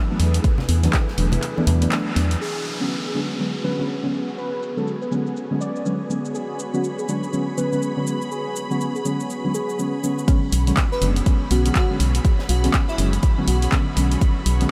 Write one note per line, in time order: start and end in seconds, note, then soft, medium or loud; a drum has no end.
0.00 2.37 A3 medium
0.00 2.37 B3 medium
0.00 2.37 E4 medium
0.00 2.37 G#4 medium
0.00 2.37 B4 medium
0.10 0.26 E3 medium
0.10 0.26 F#3 medium
0.10 0.26 A3 medium
0.10 0.27 B3 medium
0.10 0.27 D4 loud
0.20 0.40 E2 medium
0.20 open hi-hat medium
0.20 ride medium
0.34 closed hi-hat medium
0.44 kick loud
0.44 closed hi-hat medium
0.44 ride medium
0.58 snare medium
0.58 low conga medium
0.68 0.89 E2 loud
0.68 open hi-hat loud
0.68 ride medium
0.83 1.00 E3 medium
0.83 1.00 F#3 medium
0.83 1.00 A3 medium
0.83 1.00 B3 medium
0.83 1.00 D4 medium
0.83 snare medium
0.83 closed hi-hat medium
0.83 high conga medium
0.93 kick loud
0.93 snare loud
0.93 clap loud
0.93 closed hi-hat medium
0.93 ride medium
1.08 snare medium
1.18 1.38 E1 medium
1.18 1.37 E3 medium
1.18 1.37 F#3 medium
1.18 1.37 A3 medium
1.18 1.37 B3 medium
1.18 1.37 D4 medium
1.18 open hi-hat medium
1.18 ride medium
1.32 closed hi-hat medium
1.32 low conga medium
1.43 clap soft
1.43 closed hi-hat medium
1.43 ride medium
1.57 1.65 E3 loud
1.57 1.65 F#3 medium
1.57 1.65 A3 medium
1.57 1.65 B3 medium
1.57 1.65 D4 loud
1.57 high conga medium
1.67 1.87 E2 loud
1.67 1.80 E3 loud
1.67 1.80 F#3 medium
1.67 1.80 A3 medium
1.67 1.80 B3 medium
1.67 1.80 D4 loud
1.67 open hi-hat loud
1.67 ride medium
1.67 low conga medium
1.82 1.90 E3 medium
1.82 1.90 F#3 medium
1.82 1.90 A3 medium
1.82 1.90 B3 medium
1.82 1.90 D4 loud
1.82 closed hi-hat medium
1.82 ride soft
1.82 high conga medium
1.91 2.05 E3 medium
1.91 2.05 F#3 medium
1.91 2.05 A3 medium
1.91 2.05 B3 medium
1.91 2.05 D4 loud
1.91 snare loud
1.91 clap loud
1.91 closed hi-hat medium
1.91 ride medium
2.16 2.36 E2 loud
2.16 2.30 E3 medium
2.16 2.30 F#3 medium
2.16 2.30 A3 medium
2.16 2.30 B3 medium
2.16 2.30 D4 loud
2.16 snare loud
2.16 open hi-hat medium
2.16 ride medium
2.31 snare medium
2.31 closed hi-hat medium
2.41 10.24 B3 medium
2.41 10.24 C#4 medium
2.41 10.24 F#4 medium
2.41 10.24 G#4 medium
2.41 2.65 G#4 loud
2.41 10.24 C#5 medium
2.41 downlifter medium
2.66 shaker medium
2.80 2.89 D3 medium
2.80 2.89 F#3 medium
2.80 2.89 G#3 medium
2.80 2.89 B3 medium
2.80 2.89 C#4 medium
2.80 2.94 F#4 medium
3.05 3.19 G#4 medium
3.14 3.28 D3 medium
3.14 3.28 F#3 medium
3.14 3.28 G#3 medium
3.14 3.28 B3 medium
3.14 3.28 D4 medium
3.14 shaker medium
3.39 3.53 D3 medium
3.39 3.53 F#3 medium
3.39 3.53 G#3 medium
3.39 3.53 B3 medium
3.39 3.53 C#4 medium
3.64 3.76 D3 medium
3.64 3.76 F#3 medium
3.64 3.76 G#3 medium
3.64 3.77 B3 medium
3.64 3.77 C#4 medium
3.64 3.88 B4 medium
3.64 shaker medium
3.78 4.00 D3 medium
3.78 4.00 F#3 medium
3.78 4.00 G#3 medium
3.78 4.00 B3 medium
3.78 4.00 C#4 medium
3.78 shaker soft
3.89 shaker soft
4.03 4.20 D3 medium
4.03 4.20 F#3 medium
4.03 4.20 G#3 medium
4.03 4.20 B3 medium
4.03 4.20 C#4 loud
4.14 shaker medium
4.28 shaker soft
4.38 4.62 B4 loud
4.38 shaker soft
4.63 shaker medium
4.77 4.94 D3 medium
4.77 4.94 F#3 medium
4.77 4.94 G#3 medium
4.77 4.94 B3 medium
4.77 4.94 C#4 medium
4.77 4.91 A4 medium
4.77 shaker soft
4.87 shaker soft
5.02 5.16 B4 medium
5.02 shaker soft
5.11 5.31 D3 medium
5.11 5.31 F#3 medium
5.11 5.31 G#3 medium
5.11 5.31 B3 medium
5.11 5.31 C#4 medium
5.11 shaker medium
5.27 shaker soft
5.37 shaker soft
5.51 5.60 D3 loud
5.51 5.60 F#3 medium
5.51 5.60 G#3 medium
5.51 5.60 B3 medium
5.51 5.60 C#4 loud
5.61 5.85 D5 loud
5.61 shaker medium
5.76 shaker soft
5.85 5.99 D3 medium
5.85 5.99 F#3 medium
5.85 5.99 G#3 medium
5.85 5.99 B3 medium
5.85 5.99 C#4 loud
5.85 shaker soft
6.09 6.70 D3 medium
6.09 6.70 F#3 medium
6.09 6.70 G#3 medium
6.09 6.70 B3 medium
6.09 6.71 C#4 loud
6.09 shaker medium
6.25 shaker soft
6.34 6.58 G#4 medium
6.34 10.27 B5 medium
6.34 shaker soft
6.59 shaker medium
6.74 6.83 D3 medium
6.74 6.83 F#3 medium
6.74 6.83 G#3 medium
6.74 6.83 B3 medium
6.74 6.83 C#4 medium
6.74 6.88 F#4 medium
6.74 shaker soft
6.84 shaker soft
6.99 7.13 G#4 medium
6.99 shaker soft
7.08 7.22 D3 medium
7.08 7.22 F#3 medium
7.08 7.22 G#3 medium
7.08 7.22 B3 medium
7.08 7.22 D4 medium
7.08 shaker medium
7.23 shaker soft
7.33 7.46 D3 medium
7.33 7.46 F#3 medium
7.33 7.46 G#3 medium
7.33 7.46 B3 medium
7.33 7.46 C#4 medium
7.33 shaker soft
7.57 7.70 D3 medium
7.57 7.70 F#3 medium
7.57 7.70 G#3 medium
7.57 7.70 B3 medium
7.57 7.70 C#4 medium
7.57 7.81 B4 medium
7.57 shaker medium
7.72 7.93 D3 medium
7.72 7.93 F#3 medium
7.72 7.93 G#3 medium
7.72 7.93 B3 medium
7.72 7.93 C#4 medium
7.72 shaker soft
7.82 shaker soft
7.97 8.13 D3 medium
7.97 8.13 F#3 medium
7.97 8.13 G#3 medium
7.97 8.13 B3 medium
7.97 8.14 C#4 loud
8.07 shaker medium
8.22 shaker soft
8.31 8.55 G#4 medium
8.31 shaker soft
8.56 shaker medium
8.70 8.87 D3 medium
8.70 8.87 F#3 medium
8.70 8.87 G#3 medium
8.70 8.87 B3 medium
8.70 8.87 C#4 medium
8.70 8.85 F#4 medium
8.70 shaker soft
8.81 shaker soft
8.95 9.09 G#4 medium
8.95 shaker soft
9.05 9.24 D3 medium
9.05 9.24 F#3 medium
9.05 9.24 G#3 medium
9.05 9.24 B3 medium
9.05 9.24 C#4 medium
9.05 shaker medium
9.20 shaker soft
9.30 shaker soft
9.44 9.53 D3 loud
9.44 9.53 F#3 medium
9.44 9.53 G#3 medium
9.44 9.53 B3 medium
9.44 9.53 C#4 loud
9.54 9.78 G#4 medium
9.54 shaker medium
9.69 shaker soft
9.78 9.92 D3 medium
9.78 9.92 F#3 medium
9.78 9.92 G#3 medium
9.78 9.92 B3 medium
9.78 9.92 C#4 loud
9.78 shaker soft
10.03 10.27 D3 medium
10.03 10.27 F#3 medium
10.03 10.27 G#3 medium
10.03 10.27 B3 medium
10.03 10.27 C#4 medium
10.03 shaker medium
10.19 shaker soft
10.28 10.61 D3 loud
10.28 10.61 F#3 medium
10.28 10.61 G#3 medium
10.28 14.71 B3 medium
10.28 10.61 B3 medium
10.28 14.71 C#4 medium
10.28 10.62 C#4 loud
10.28 14.71 F#4 medium
10.28 14.71 G#4 medium
10.28 14.71 C#5 medium
10.28 14.71 B5 medium
10.28 kick loud
10.28 closed hi-hat medium
10.28 ride medium
10.28 shaker soft
10.52 10.72 B1 loud
10.52 open hi-hat loud
10.52 ride medium
10.52 shaker medium
10.67 10.76 D3 medium
10.67 10.76 F#3 medium
10.67 10.76 G#3 medium
10.67 10.76 B3 medium
10.67 10.76 C#4 medium
10.67 snare soft
10.67 closed hi-hat medium
10.67 shaker soft
10.77 kick loud
10.77 snare loud
10.77 clap loud
10.77 closed hi-hat medium
10.77 ride medium
10.77 shaker soft
10.92 11.05 B4 loud
10.92 snare medium
10.92 shaker soft
11.01 11.22 F#1 medium
11.01 11.15 D3 medium
11.01 11.15 F#3 medium
11.01 11.15 G#3 medium
11.01 11.15 B3 medium
11.01 11.15 D4 medium
11.01 open hi-hat medium
11.01 ride medium
11.01 shaker medium
11.16 closed hi-hat medium
11.16 ride soft
11.16 shaker soft
11.26 11.40 D3 medium
11.26 11.40 F#3 medium
11.26 11.40 G#3 medium
11.26 11.40 B3 medium
11.26 11.40 C#4 medium
11.26 kick loud
11.26 closed hi-hat medium
11.26 ride medium
11.26 shaker soft
11.51 11.71 B1 loud
11.51 11.63 D3 medium
11.51 11.63 F#3 medium
11.51 11.63 G#3 medium
11.51 11.63 B3 medium
11.51 11.64 C#4 loud
11.51 11.60 F#4 medium
11.51 open hi-hat loud
11.51 ride medium
11.51 shaker medium
11.65 11.87 D3 medium
11.65 11.87 F#3 medium
11.65 11.87 G#3 medium
11.65 11.87 B3 medium
11.65 11.87 C#4 loud
11.65 11.72 F#4 medium
11.65 closed hi-hat medium
11.65 shaker soft
11.75 11.93 F#4 medium
11.75 kick loud
11.75 snare loud
11.75 clap loud
11.75 closed hi-hat medium
11.75 ride loud
11.75 shaker soft
11.90 12.07 D3 loud
11.90 12.07 F#3 medium
11.90 12.07 G#3 medium
11.90 12.07 B3 medium
11.90 12.07 C#4 loud
12.00 12.20 B1 loud
12.00 open hi-hat medium
12.00 ride medium
12.00 shaker medium
12.15 closed hi-hat medium
12.15 shaker soft
12.24 kick loud
12.24 closed hi-hat medium
12.24 ride medium
12.24 shaker soft
12.39 snare medium
12.49 12.69 B1 loud
12.49 12.66 F#4 loud
12.49 open hi-hat loud
12.49 ride medium
12.49 shaker medium
12.64 12.80 D3 medium
12.64 12.81 F#3 medium
12.64 12.81 G#3 medium
12.64 12.81 B3 medium
12.64 12.81 C#4 medium
12.64 snare medium
12.64 closed hi-hat medium
12.64 shaker soft
12.73 kick loud
12.73 snare loud
12.73 clap loud
12.73 closed hi-hat medium
12.73 ride medium
12.73 shaker soft
12.88 13.02 E4 loud
12.88 snare medium
12.88 shaker soft
12.98 13.18 F#1 medium
12.98 13.18 D3 medium
12.98 13.18 F#3 medium
12.98 13.18 G#3 medium
12.98 13.18 B3 medium
12.98 13.18 C#4 medium
12.98 snare soft
12.98 open hi-hat loud
12.98 ride medium
12.98 shaker medium
13.13 closed hi-hat medium
13.13 shaker soft
13.23 kick loud
13.23 closed hi-hat medium
13.23 ride medium
13.23 shaker soft
13.37 13.47 D3 loud
13.37 13.47 F#3 medium
13.37 13.47 G#3 medium
13.37 13.47 B3 medium
13.37 13.47 C#4 loud
13.48 13.68 B1 loud
13.48 13.57 F#4 medium
13.48 open hi-hat loud
13.48 ride medium
13.48 shaker medium
13.62 13.69 F#4 medium
13.62 closed hi-hat medium
13.62 ride soft
13.62 shaker soft
13.72 13.85 D3 medium
13.72 13.86 F#3 medium
13.72 13.86 G#3 medium
13.72 13.86 B3 medium
13.72 13.86 C#4 loud
13.72 kick loud
13.72 snare loud
13.72 clap loud
13.72 closed hi-hat medium
13.72 ride medium
13.72 shaker soft
13.96 14.17 B1 medium
13.96 14.57 D3 medium
13.96 14.57 F#3 medium
13.96 14.57 G#3 medium
13.96 14.57 B3 medium
13.96 14.57 C#4 loud
13.96 open hi-hat loud
13.96 ride medium
13.96 shaker medium
14.12 closed hi-hat medium
14.12 shaker soft
14.21 kick loud
14.21 closed hi-hat medium
14.21 ride medium
14.21 shaker soft
14.46 14.66 B1 loud
14.46 open hi-hat loud
14.46 ride medium
14.46 shaker medium
14.60 14.70 D3 medium
14.60 14.70 F#3 medium
14.60 14.70 G#3 medium
14.60 14.70 B3 medium
14.60 14.70 C#4 medium
14.60 snare soft
14.60 closed hi-hat medium
14.60 shaker soft